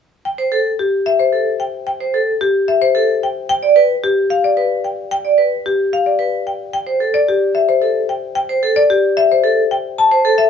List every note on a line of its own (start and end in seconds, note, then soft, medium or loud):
0.25 0.43 G5 medium
0.38 0.56 C5 soft
0.52 0.69 A4 soft
0.79 0.97 G4 soft
1.06 1.24 E5 medium
1.19 1.37 C5 soft
1.33 1.50 A4 soft
1.60 1.78 G5 soft
1.87 2.05 G5 medium
2.00 2.18 C5 soft
2.14 2.32 A4 soft
2.41 2.59 G4 medium
2.68 2.86 E5 medium
2.82 2.99 C5 medium
2.95 3.13 A4 medium
3.23 3.40 G5 medium
3.49 3.67 G5 medium
3.63 3.80 D5 medium
3.76 3.94 B4 medium
4.04 4.21 G4 medium
4.30 4.48 F5 medium
4.44 4.62 D5 medium
4.57 4.75 B4 medium
4.84 5.02 G5 soft
5.11 5.29 G5 medium
5.25 5.42 D5 soft
5.38 5.56 B4 soft
5.66 5.83 G4 medium
5.93 6.10 F5 medium
6.06 6.24 D5 soft
6.19 6.37 B4 soft
6.47 6.64 G5 soft
6.73 6.91 G5 medium
6.87 7.05 C5 soft
7.00 7.18 A4 soft
7.14 7.32 D5 medium
7.29 7.46 G4 medium
7.55 7.72 E5 medium
7.69 7.86 C5 soft
7.82 7.99 A4 soft
8.09 8.26 G5 soft
8.35 8.53 G5 medium
8.49 8.67 C5 soft
8.63 8.80 A4 medium
8.76 8.94 D5 medium
8.90 9.07 G4 medium
9.17 9.34 E5 medium
9.32 9.48 C5 medium
9.44 9.61 A4 medium
9.71 9.89 G5 medium
9.98 10.16 A5 medium
10.12 10.29 C5 medium
10.25 10.43 A4 medium
10.38 10.50 E5 medium